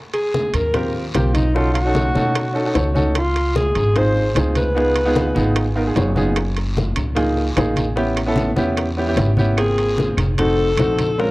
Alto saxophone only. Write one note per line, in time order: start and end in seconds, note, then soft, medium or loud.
0.14 0.57 G#4 loud
0.55 0.95 A#4 loud
1.15 1.35 G4 medium
1.34 1.56 D#4 medium
1.55 1.73 F4 medium
1.74 2.91 F#4 loud
3.16 3.57 F4 loud
3.56 3.99 G#4 loud
3.97 4.37 C5 loud
4.57 5.73 B4 loud
9.58 10.15 G#4 loud
10.39 11.21 A4 loud
11.20 11.31 A#4 loud